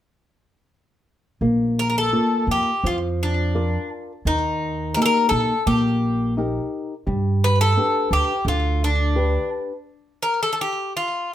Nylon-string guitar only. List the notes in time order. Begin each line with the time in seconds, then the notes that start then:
1.42 A#3
2.12 A#3 F4 D5
2.84 F3
3.55 F4 A#4 D5
4.26 D#3
4.96 A#3 D#4 G4
5.66 A#3
6.37 D#4 G4 A#4
7.07 G3
7.77 D4 G4 B4
8.46 D3
9.15 D4 G4 B4